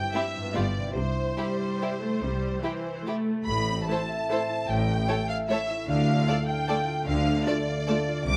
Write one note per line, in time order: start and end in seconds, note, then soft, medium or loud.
0.00 0.36 G2 soft
0.00 0.51 C4 soft
0.00 0.53 E4 soft
0.00 0.50 G4 soft
0.00 0.55 C5 soft
0.00 0.15 G5 medium
0.14 0.22 G3 soft
0.14 0.22 C4 soft
0.14 0.23 E4 soft
0.14 0.23 G4 soft
0.14 0.55 E5 medium
0.38 0.88 G2 soft
0.42 0.90 B3 soft
0.47 0.93 F4 soft
0.51 0.87 G1 medium
0.51 0.62 G3 soft
0.51 0.62 B3 soft
0.51 0.63 F4 soft
0.51 0.90 G4 soft
0.51 0.63 G4 soft
0.55 0.88 G2 soft
0.55 0.95 D5 medium
0.78 3.40 C3 soft
0.83 3.66 C4 soft
0.87 4.48 E4 soft
0.92 1.28 C2 soft
0.92 1.28 C3 soft
0.92 3.47 G4 soft
0.96 3.02 C5 medium
1.37 1.98 G3 soft
1.37 1.46 E4 soft
1.37 1.45 G4 soft
1.82 1.90 E4 soft
1.82 1.90 G4 soft
2.02 2.22 A3 soft
2.22 2.54 C2 soft
2.22 2.54 C3 soft
2.22 2.63 G3 soft
2.61 3.05 E3 soft
2.61 2.72 E4 soft
2.61 2.72 G4 soft
3.05 3.46 A3 soft
3.05 3.15 E4 soft
3.05 3.15 G4 soft
3.46 3.80 A1 soft
3.46 3.81 A2 soft
3.46 4.68 A2 soft
3.46 3.85 B5 medium
3.67 4.70 C4 soft
3.87 3.96 A3 soft
3.87 3.95 E4 soft
3.87 5.06 A4 soft
3.87 3.99 A4 soft
3.87 3.99 C5 soft
3.87 4.69 A5 medium
4.09 5.28 E5 soft
4.29 4.37 A3 soft
4.29 4.37 E4 soft
4.29 4.39 A4 soft
4.29 4.70 C5 soft
4.29 4.39 C5 soft
4.50 5.69 E4 soft
4.68 5.01 A1 soft
4.68 5.90 A2 soft
4.68 5.01 A2 soft
4.68 5.29 G5 medium
4.88 5.90 C#4 soft
5.07 5.16 A3 soft
5.07 5.16 E4 soft
5.07 6.27 A4 soft
5.07 5.16 A4 soft
5.07 5.17 C#5 soft
5.29 5.90 E5 soft
5.29 5.37 F5 medium
5.49 5.57 A3 soft
5.49 5.57 E4 soft
5.49 5.59 A4 soft
5.49 5.90 C#5 soft
5.49 5.58 C#5 soft
5.49 5.87 E5 medium
5.70 5.90 E4 soft
5.88 6.21 D2 soft
5.88 6.21 D3 soft
5.88 7.06 D3 soft
5.88 6.47 F5 medium
6.08 7.25 A3 soft
6.27 6.35 A3 soft
6.27 6.35 F4 soft
6.27 6.36 A4 soft
6.27 6.68 A4 soft
6.27 6.36 D5 soft
6.47 7.67 F5 soft
6.47 7.05 G5 medium
6.68 6.76 A3 soft
6.68 6.76 F4 soft
6.68 6.76 A4 soft
6.68 7.46 A4 soft
6.68 6.76 D5 soft
6.88 8.07 F4 soft
7.06 7.40 D2 soft
7.06 7.40 D3 soft
7.06 8.29 D3 soft
7.06 7.46 F5 medium
7.27 8.37 A3 soft
7.46 7.54 A3 soft
7.46 7.54 F4 soft
7.46 7.55 A4 soft
7.46 7.87 A4 soft
7.46 8.27 D5 medium
7.46 7.55 D5 soft
7.68 8.29 F5 soft
7.87 7.96 A3 soft
7.87 7.96 F4 soft
7.87 7.96 A4 soft
7.87 8.37 A4 soft
7.87 7.95 D5 soft
8.08 8.29 F4 soft
8.25 8.37 C2 medium
8.25 8.37 C3 soft
8.25 8.37 D6 medium